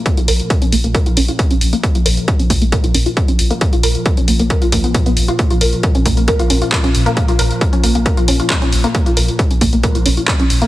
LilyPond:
<<
  \new Staff \with { instrumentName = "Synth arpeggio sound" } { \time 4/4 \key bes \minor \tempo 4 = 135 bes16 f'16 bes'16 r8 des'16 bes16 bes16 bes'16 f'16 des'16 f'16 r16 des'16 r16 bes16 | bes16 f'16 bes'16 r8 des'16 bes16 bes16 bes'16 f'16 des'16 f'16 r16 des'16 r16 bes16 | bes16 f'16 bes'16 r8 des'16 bes16 bes16 bes'16 f'16 bes16 ces'16 r16 ces'16 r16 f'16 | bes16 f'16 bes'16 r8 des'16 bes16 bes16 bes'16 f'16 des'16 f'16 r16 des'16 r16 bes16 |
bes16 f'16 bes'16 r8 des'16 bes16 bes16 bes'16 f'16 des'16 f'16 r16 des'16 r16 bes16 | bes16 f'16 bes'16 r8 des'16 bes16 bes16 bes'16 f'16 des'16 f'16 r16 des'16 r16 bes16 | }
  \new Staff \with { instrumentName = "Ambient pad" } { \clef bass \time 4/4 \key bes \minor <bes, f>1~ | <bes, f>1~ | <bes, f>1~ | <bes, f>1~ |
<bes, f>1~ | <bes, f>1 | }
  \new Staff \with { instrumentName = "Sub bass" } { \clef bass \time 4/4 \key bes \minor r16 bes,,16 bes,,16 r8 bes,,16 bes,,16 bes,,16 r16 bes,,16 bes,,16 r8 bes,,16 bes,,16 r16 | r16 bes,,16 bes,,16 r8 bes,,16 bes,,16 bes,,16 r16 bes,,16 bes,,16 r8 bes,,16 bes,,16 r16 | r16 bes,,16 bes,,16 r8 bes,,16 bes,,16 bes,,16 r16 bes,,16 bes,,16 r8 bes,,16 bes,,16 r16 | r16 bes,,16 bes,,16 r8 bes,,16 bes,,16 bes,,16 r16 bes,,16 bes,,16 r8 bes,,16 bes,,16 r16 |
r16 bes,,16 bes,,16 r8 bes,,16 bes,,16 bes,,16 r16 bes,,16 bes,,16 r8 bes,,16 bes,,16 r16 | r16 bes,,16 bes,,16 r8 bes,,16 bes,,16 bes,,16 r16 bes,,16 bes,,16 r8 bes,,16 bes,,16 r16 | }
  \new DrumStaff \with { instrumentName = "Drums" } \drummode { \time 4/4 <hh bd>16 hh16 hho16 hh16 <hh bd>16 hh16 hho16 hh16 <hh bd>16 hh16 hho16 hh16 <hh bd>16 hh16 hho16 hh16 | <hh bd>16 hh16 hho16 hh16 <hh bd>16 hh16 <hho bd>16 hh16 <hh bd>16 hh16 hho16 hh16 <hh bd>16 hh16 hho16 hh16 | <hh bd>16 hh16 hho16 hh16 <hh bd>16 hh16 hho16 hh16 <hh bd>16 hh16 <hho bd>16 hh16 <hh bd>16 hh16 hho16 hh16 | <hh bd>16 hh16 hho16 hh16 <hh bd>16 hh16 <hho bd>16 hh16 <hh bd>16 hh16 hho16 hh16 <hc hh bd>16 hh16 hho16 hh16 |
<hh bd>16 hh16 hho16 hh16 <hh bd>16 hh16 hho16 hh16 <hh bd>16 hh16 hho16 hh16 <hc hh bd>16 hh16 hho16 hh16 | <hh bd>16 hh16 hho16 hh16 <hh bd>16 hh16 <hho bd>16 hh16 <hh bd>16 hh16 hho16 hh16 <hc hh bd>16 hh16 hho16 hh16 | }
>>